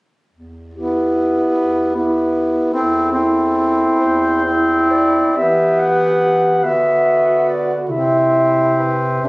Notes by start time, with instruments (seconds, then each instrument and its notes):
0.32 bass clarinet E2
0.73 tenor saxophone B3, alto saxophone E4, clarinet G4
1.54 bass clarinet E2
1.94 tenor saxophone B3, alto saxophone E4, clarinet G4
2.72 bass clarinet E2, tenor saxophone C4, alto saxophone E4, clarinet A4
3.12 tenor saxophone C4, alto saxophone E4, clarinet A4
3.99 bass clarinet E2, clarinet C5
4.44 tenor saxophone C4, alto saxophone E4
4.91 clarinet D5
5.36 bass clarinet E3, tenor saxophone B3, alto saxophone G4, clarinet E5
5.79 clarinet F#5
6.63 bass clarinet D3, tenor saxophone B3, alto saxophone F#4, clarinet E5
7.48 clarinet D5
7.89 bass clarinet C3, tenor saxophone C4, alto saxophone E4, clarinet E5
8.79 clarinet B4
9.22 bass clarinet B2, tenor saxophone D4, alto saxophone G4, clarinet E5